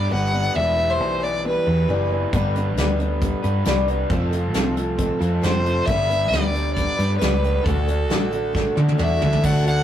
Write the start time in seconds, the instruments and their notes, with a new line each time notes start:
Already playing: overdriven electric guitar B3 D4, steel-string acoustic guitar B4
0.09 picked electric bass G1, steel-string acoustic guitar G2 D3 G3 B3 D4 B4, fiddle F#5
0.32 steel-string acoustic guitar G3 B3 D4 B4
0.54 picked electric bass E1, steel-string acoustic guitar E3 G3 B3 D4 B4, overdriven electric guitar E4 G4, fiddle E5
0.76 steel-string acoustic guitar B3 D4 B4
0.90 fiddle C5
0.98 picked electric bass B1, steel-string acoustic guitar E3 G3 B3 D4 B4
1.20 steel-string acoustic guitar B3 D4 B4, fiddle D5
1.43 steel-string acoustic guitar G3 B3 D4 B4, fiddle B4
1.66 picked electric bass E2, overdriven electric guitar E3 E4 G4, steel-string acoustic guitar B3 D4 B4
1.89 picked electric bass F#1, steel-string acoustic guitar E3 G3 B3 D4 B4, overdriven electric guitar E4 G4
2.10 steel-string acoustic guitar B3 D4 B4
2.33 picked electric bass G1, steel-string acoustic guitar G2 D3 G3 B3 D4 B4, kick, closed hi-hat
2.55 steel-string acoustic guitar G3 B3 D4 B4, closed hi-hat
2.77 picked electric bass D2, steel-string acoustic guitar G2 D3 G3 B3 D4 B4, snare, closed hi-hat
2.98 steel-string acoustic guitar G3 B3 D4 B4, closed hi-hat
3.21 steel-string acoustic guitar G3 B3 D4 B4, kick, closed hi-hat
3.43 picked electric bass G2, steel-string acoustic guitar G3 B3 D4 B4, closed hi-hat
3.65 picked electric bass C2, steel-string acoustic guitar G2 D3 G3 B3 D4 B4, snare, closed hi-hat
3.87 steel-string acoustic guitar G3 B3 D4 B4, closed hi-hat
4.09 picked electric bass F1, steel-string acoustic guitar F3 C4 F4 A4, overdriven electric guitar A3, kick, closed hi-hat
4.31 steel-string acoustic guitar C4 F4 A4, closed hi-hat
4.54 picked electric bass C2, steel-string acoustic guitar F3 C4 F4 A4, snare, closed hi-hat
4.76 steel-string acoustic guitar C4 F4 A4, closed hi-hat
4.98 steel-string acoustic guitar F3 C4 F4 A4, kick, closed hi-hat
5.20 picked electric bass F2, overdriven electric guitar F3 A3, steel-string acoustic guitar C4 F4 A4, closed hi-hat
5.42 picked electric bass F1, steel-string acoustic guitar F3 C4 F4 A4, overdriven electric guitar A3, fiddle C5, snare, closed hi-hat
5.65 steel-string acoustic guitar C4 F4 A4, closed hi-hat
5.86 picked electric bass G1, steel-string acoustic guitar G2 D3 G3 B3 D4 B4, fiddle E5, kick, closed hi-hat
6.10 steel-string acoustic guitar G3 B3 D4 B4, closed hi-hat
6.28 steel-string acoustic guitar G2 D3, fiddle D5
6.32 picked electric bass D2, steel-string acoustic guitar G3 B3 D4 B4, snare, closed hi-hat
6.54 steel-string acoustic guitar G3 B3 D4 B4, closed hi-hat
6.73 steel-string acoustic guitar G3, fiddle D5, kick, closed hi-hat
6.78 steel-string acoustic guitar B3 D4 B4
6.99 picked electric bass G2, steel-string acoustic guitar G3 B3 D4 B4, closed hi-hat
7.18 picked electric bass C#2, fiddle B4, closed hi-hat
7.22 steel-string acoustic guitar G2 D3 G3 B3 D4 B4, snare
7.43 steel-string acoustic guitar G3 B3 D4 B4, closed hi-hat
7.64 picked electric bass D2, steel-string acoustic guitar D3 A3 D4 F#4, fiddle A4, kick, closed hi-hat
7.68 steel-string acoustic guitar A4
7.87 steel-string acoustic guitar D4 F#4 A4, closed hi-hat
8.09 picked electric bass A1, steel-string acoustic guitar D3 A3 D4 F#4 A4, snare, closed hi-hat
8.31 steel-string acoustic guitar D4 F#4 A4, closed hi-hat
8.53 steel-string acoustic guitar A3 D4 F#4 A4, kick, snare
8.76 picked electric bass D3, overdriven electric guitar D3, steel-string acoustic guitar D4 F#4 A4, high tom
8.88 high tom
8.98 picked electric bass E2, steel-string acoustic guitar D3 A3 D4 F#4 A4, fiddle E5, mid tom
9.20 picked electric bass D2, steel-string acoustic guitar D4 F#4 A4, floor tom
9.33 floor tom
9.43 picked electric bass D2, steel-string acoustic guitar D3 A3 D4 F#4 A4, fiddle F#5, kick, crash
9.64 steel-string acoustic guitar D4 F#4 A4, fiddle F#5, closed hi-hat